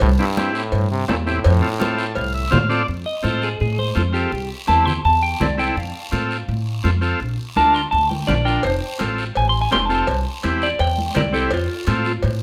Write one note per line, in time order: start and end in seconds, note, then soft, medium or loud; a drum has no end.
0.00 0.16 C2 loud
0.00 0.09 A2 medium
0.00 cowbell loud
0.00 high conga soft
0.00 long guiro medium
0.19 0.56 G2 medium
0.19 0.25 C4 medium
0.19 0.26 E4 medium
0.19 0.26 G4 medium
0.37 0.62 C4 medium
0.37 0.62 E4 medium
0.37 0.63 G4 medium
0.37 high conga medium
0.37 short guiro medium
0.55 0.90 A2 medium
0.55 short guiro medium
0.72 1.02 G2 medium
0.72 cowbell medium
0.72 high conga soft
0.72 long guiro medium
0.91 1.08 C3 medium
1.08 1.38 E2 loud
1.08 1.17 A#2 medium
1.08 1.15 C4 medium
1.08 1.15 E4 medium
1.08 1.15 A4 medium
1.08 high conga medium
1.08 low timbale medium
1.08 short guiro medium
1.26 2.49 A2 loud
1.26 1.39 C4 medium
1.26 1.39 E4 medium
1.26 1.40 G4 medium
1.26 short guiro medium
1.44 1.60 F2 loud
1.44 cowbell loud
1.44 high conga soft
1.44 long guiro medium
1.62 1.69 C4 medium
1.62 1.69 F4 medium
1.62 1.69 A4 medium
1.79 2.05 C4 medium
1.79 2.05 F4 medium
1.79 2.06 A4 medium
1.79 high conga medium
1.79 short guiro medium
1.97 2.07 G5 medium
1.97 short guiro medium
2.06 2.15 A5 medium
2.15 2.46 C2 medium
2.15 2.33 F5 medium
2.15 cowbell medium
2.15 high conga soft
2.15 long guiro medium
2.34 2.51 E5 medium
2.51 2.82 A2 medium
2.51 2.58 C4 medium
2.51 2.58 F4 medium
2.51 2.59 C5 loud
2.51 2.69 F5 medium
2.51 high conga medium
2.51 low conga medium
2.51 low timbale medium
2.51 short guiro medium
2.69 2.83 C4 medium
2.69 2.83 F4 medium
2.69 2.83 A4 loud
2.69 2.87 D5 medium
2.69 short guiro medium
2.88 3.03 F2 medium
2.88 long guiro medium
3.06 3.24 D#5 medium
3.23 3.53 A2 medium
3.23 3.49 C4 medium
3.23 3.49 F4 medium
3.23 3.49 A4 medium
3.23 3.42 C5 medium
3.23 high conga medium
3.23 short guiro medium
3.42 3.60 G#4 medium
3.42 short guiro medium
3.60 3.90 A2 loud
3.60 3.78 G#4 medium
3.60 long guiro medium
3.79 4.14 C5 medium
3.79 high conga medium
3.95 4.25 F2 medium
3.95 4.02 C4 medium
3.95 4.02 F4 medium
3.95 4.03 A4 medium
3.95 high conga medium
3.95 short guiro medium
4.13 4.32 C4 medium
4.13 4.32 F4 medium
4.13 4.49 G4 medium
4.13 4.32 A4 medium
4.13 short guiro medium
4.32 4.47 C2 medium
4.32 long guiro medium
4.67 4.97 E2 medium
4.67 4.93 C4 medium
4.67 4.93 E4 medium
4.67 4.93 G4 medium
4.67 4.86 A5 loud
4.67 high conga medium
4.67 short guiro medium
4.86 5.04 C6 medium
4.86 low conga medium
4.86 short guiro medium
5.05 5.33 E2 loud
5.05 5.22 A5 medium
5.05 long guiro medium
5.22 5.40 G5 medium
5.40 5.69 C2 medium
5.40 5.47 C4 medium
5.40 5.47 E4 medium
5.40 5.47 G4 medium
5.40 5.59 D5 medium
5.40 high conga medium
5.40 low conga medium
5.40 short guiro medium
5.58 5.76 C4 medium
5.58 5.76 E4 medium
5.58 5.76 A4 medium
5.58 5.79 G5 medium
5.58 short guiro medium
5.76 5.91 F2 medium
5.76 6.13 F5 medium
5.76 long guiro medium
6.12 6.41 A2 medium
6.12 6.37 C4 medium
6.12 6.37 F4 medium
6.12 6.38 A4 medium
6.12 high conga medium
6.12 short guiro medium
6.31 short guiro medium
6.48 6.77 A2 loud
6.48 long guiro medium
6.84 7.13 F2 medium
6.84 6.90 C4 medium
6.84 6.90 F4 medium
6.84 6.91 A4 medium
6.84 high conga medium
6.84 short guiro medium
7.01 7.20 C4 medium
7.01 7.20 F4 medium
7.01 7.20 A4 medium
7.01 short guiro medium
7.20 7.35 A#1 medium
7.20 long guiro medium
7.56 7.85 D2 medium
7.56 7.81 D4 medium
7.56 7.81 F4 medium
7.56 7.82 A#4 medium
7.56 7.74 A5 medium
7.56 high conga medium
7.56 short guiro medium
7.74 7.91 C6 medium
7.74 short guiro medium
7.91 8.21 D2 loud
7.91 8.09 A5 medium
7.91 long guiro medium
8.09 8.27 G5 medium
8.09 high conga medium
8.27 8.57 A#1 medium
8.27 8.34 D4 medium
8.27 8.34 F4 medium
8.27 8.34 G4 medium
8.27 8.45 D5 medium
8.27 high conga medium
8.27 low conga medium
8.27 short guiro medium
8.45 8.63 D4 medium
8.45 8.64 F4 medium
8.45 8.64 A#4 medium
8.45 8.63 G5 medium
8.45 short guiro medium
8.63 8.79 F1 medium
8.63 8.99 C5 medium
8.63 cowbell medium
8.63 long guiro medium
8.99 9.29 A1 medium
8.99 9.24 C4 medium
8.99 9.25 F4 medium
8.99 9.25 A4 medium
8.99 cowbell medium
8.99 high conga medium
8.99 short guiro medium
9.18 short guiro medium
9.35 9.65 A1 loud
9.35 9.48 G#5 loud
9.35 cowbell medium
9.35 long guiro medium
9.49 9.60 C6 medium
9.61 9.72 G#5 medium
9.71 10.01 F1 medium
9.71 9.78 C4 medium
9.71 9.78 F4 medium
9.71 9.78 G4 medium
9.71 9.85 C6 medium
9.71 cowbell medium
9.71 high conga medium
9.71 low timbale medium
9.71 short guiro medium
9.85 10.07 C4 medium
9.85 10.20 A5 loud
9.90 10.08 F4 medium
9.90 10.08 A4 medium
9.90 short guiro medium
10.07 10.22 C2 medium
10.07 cowbell medium
10.07 long guiro medium
10.43 10.73 E2 medium
10.43 10.69 C4 medium
10.43 10.69 E4 medium
10.43 10.69 G4 medium
10.43 cowbell medium
10.43 high conga medium
10.43 short guiro medium
10.62 10.80 D5 loud
10.62 short guiro medium
10.79 11.08 E2 medium
10.79 11.15 G5 medium
10.79 cowbell medium
10.79 long guiro medium
10.98 high conga medium
11.15 11.44 C2 medium
11.15 11.21 C4 medium
11.15 11.22 E4 medium
11.15 11.22 A#4 medium
11.15 11.34 D5 medium
11.15 cowbell medium
11.15 high conga medium
11.15 low conga medium
11.15 short guiro medium
11.32 11.51 C4 medium
11.32 11.51 E4 medium
11.32 11.51 G4 medium
11.32 11.51 A4 medium
11.32 short guiro medium
11.51 11.66 F2 medium
11.51 12.22 F4 medium
11.51 cowbell medium
11.51 long guiro medium
11.87 12.16 A2 medium
11.87 12.12 C4 medium
11.87 12.13 F4 medium
11.87 12.13 A4 medium
11.87 cowbell medium
11.87 high conga medium
11.87 short guiro medium
12.05 short guiro medium
12.23 12.43 A2 loud
12.23 cowbell medium
12.23 long guiro medium